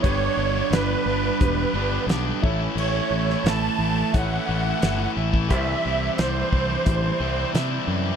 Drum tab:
CC |----------------|x---------------|----------------|
HH |x---x---x---x---|----x---x---x---|x---x---x---x---|
SD |----o-------o---|---oo-------o---|----o-------o---|
BD |o-------o-----o-|--------o------o|o-----o-o-------|